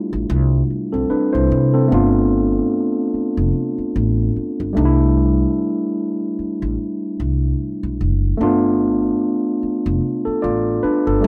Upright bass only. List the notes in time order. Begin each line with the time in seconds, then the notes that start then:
0.13 A1
0.30 C2
0.70 muted upright bass stroke
0.94 B1
1.11 muted upright bass stroke
1.35 C2
1.52 C3
1.92 G1
3.14 muted upright bass stroke
3.37 F1
3.78 muted upright bass stroke
3.96 A1
4.36 muted upright bass stroke
4.60 G1
4.77 C2
6.39 muted upright bass stroke
6.62 A1
7.20 C2
7.83 B1
8.01 F#1
8.41 G1
9.63 muted upright bass stroke
9.86 F1
10.27 muted upright bass stroke
10.44 A1
10.84 muted upright bass stroke
11.07 G1